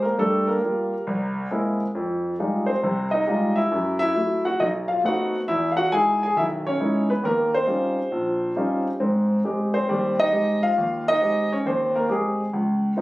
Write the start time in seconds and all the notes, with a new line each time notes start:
0.02 A#3 A#4
0.18 G2 G3 A3 A4
0.47 A#3 A#4
0.62 G3 A#3 F4
1.07 C2
1.51 G#3 A#3 C4 E4
1.95 F2
2.39 G3 G#3 D#4 F4
2.66 C4 C5
2.83 C2 C3
3.11 D#4 D#5
3.27 G3 G#3 D#4 F4
3.56 E4 E5
3.72 F#2
3.99 E4 E5
4.15 F#3 A3 E4
4.45 F#4 F#5
4.60 B1 D#4 D#5
4.88 F4 F5
5.04 A3 B3 C4 D#4 F#5
5.08 F#4
5.48 E2 E4 E5
5.72 F5
5.77 F#4 F#5
5.92 G#3 D#4 E4 G#4 G#5
6.23 G#4 G#5
6.36 B1 D#3 E4 E5
6.67 C#4 C#5
6.80 G#3 D#4 E4
7.10 B3 B4
7.24 D#2 A#3 A#4
7.54 C4 C5
7.67 G3 C4 C#4 D#4 F4
8.12 A#1
8.56 G3 C4 C#4 D#4 F4
9.00 G#2 C4
9.44 G#3 C4 G4
9.74 C4 C5
9.89 D#2 G3
10.20 D#4 D#5
10.32 G#3 C4 G4
10.63 F4 F5
10.78 D#2
11.08 D#4 D#5
11.21 G#3 C4 G4
11.52 C#4 C#5
11.65 D#2 C4 C5
11.95 A#3 A#4
12.09 G#3 C4 G4 G#4
12.53 C#2
12.97 F3 C4 C#4 D#4